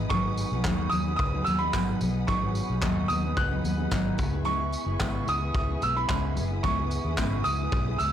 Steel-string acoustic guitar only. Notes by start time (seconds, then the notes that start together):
Already playing: G#3 B3 D#4 G#4
0.10 G#2 D#3 F#3 B3 D#4 G#4
0.23 F#3 B3 D#4 G#4
0.51 F#3 B3 D#4 G#4
0.65 G#2 D#3 F#3 B3 D#4 G#4
0.91 F#3 B3 D#4 G#4
1.05 F#3 B3 D#4 G#4
1.32 F#3 B3 D#4 G#4
1.46 F#3 B3 D#4 G#4
1.60 F#3 B3 D#4 G#4
1.73 G#2 D#3 F#3 B3 D#4 G#4
2.00 F#3 B3 D#4 G#4
2.27 G#2 D#3 F#3 B3 D#4 G#4
2.41 F#3 B3 D#4 G#4
2.69 F#3 B3 D#4 G#4
2.82 G#2 D#3 F#3 B3 D#4 G#4
3.09 F#3 B3 D#4 G#4
3.22 F#3 B3 D#4 G#4
3.49 F#3 B3 D#4 G#4
3.63 F#3 B3 D#4 G#4
3.78 F#3 B3 D#4 G#4
3.91 G#2 D#3 F#3 B3 D#4 G#4
4.17 G#3 B3 E4 G#4
4.31 B3 E4 G#4
4.44 C#3 G#3 B3 E4 G#4
4.58 B3 E4 G#4
4.84 B3 E4 G#4
4.99 C#3 G#3 B3 E4 G#4
5.25 G#3 B3 E4 G#4
5.40 B3 E4 G#4
5.67 B3 E4 G#4
5.80 G#3 B3 E4 G#4
5.94 B3 E4 G#4
6.08 C#3 G#3 B3 E4 G#4
6.35 G#3 B3 E4 G#4
6.50 B3 E4 G#4
6.64 C#3 G#3 B3 E4 G#4
6.77 B3 E4 G#4
7.04 B3 E4 G#4
7.18 C#3 G#3 B3 E4 G#4
7.44 G#3 B3 E4 G#4
7.58 B3 E4 G#4
7.86 B3 E4 G#4
7.99 G#3 B3 E4 G#4